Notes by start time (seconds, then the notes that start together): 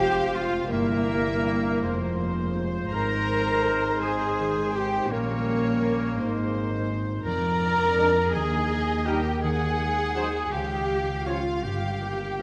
Already playing: F1 F2 F3 G#3 F4 G4 C5 F5 G5
0.00 C3
0.34 G#3 F4 F5
0.70 G1 G2 G3 A#3 E4 A#4 E5
1.07 G3
1.45 E4 A#4
1.82 F1 F2 G#3 F4 C5
2.20 G#3
2.56 F4 C5
2.91 G#1 G#2 D#4 A#4 A#5
3.30 G#3
4.02 G#3 G#4 G#5
4.39 D#3
4.74 G#3 G4 G5
5.10 A#1 A#2 G3 A#3 C#4 A#4 C#5
5.46 G3
5.82 C#4 C#5
6.16 G#1 G#2 G#3 D#4 C5
6.53 G#3
6.90 D#4 C5
7.24 F2 F3 A#4 D5 A#5
7.62 D4
7.97 G#3 D4 A#4
8.33 D#2 D#3 G#4 D#5 G#5
8.71 D#4
9.06 G3 D#4 G4 A#4 G5
9.42 D#3 G#4 F#5 G#5
9.79 G#3
10.15 F#3 D#4 F#4 C5
10.51 C#2 C#3 G4 F5 G5
10.89 G#3
11.26 F3 C#4 F4 C#5 F5
11.63 G1 G2 G4 G5
12.01 A#3
12.38 F3 C#4 F4 A#4